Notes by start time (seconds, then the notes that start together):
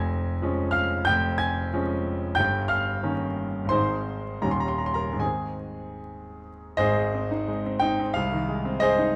Already playing: F1 F2 G#5 G#6
0.42 F3 G#3 C#4
0.71 F5 F6
1.05 F1 F2 G5 G6
1.38 G#5 G#6
1.73 F3 G#3 C#4
2.35 G1 G2 G5 G6
2.68 F5 F6
3.03 D#3 A#3 C#4
3.65 G#1
3.69 G#2 D#3 G#3 C4 C5 C6
4.42 D#1 D#2 D#3 G3 C#4 A#5
4.51 C6
4.60 A#5
4.68 C6
4.78 A#5
4.86 C6
4.94 A#4 A#5
5.13 G#2
5.18 D#3 G#3 C4 G#4 G#5
6.77 G#1 G#2 G#4 C5 D#5
6.97 G#3
7.14 C4
7.31 D#4
7.48 G#3
7.66 C4
7.79 D#4 G5
8.00 C4
8.14 C2 F5
8.32 D#3
8.48 G#3
8.65 C4
8.80 G#3 G#4 C5 D#5
8.98 D#4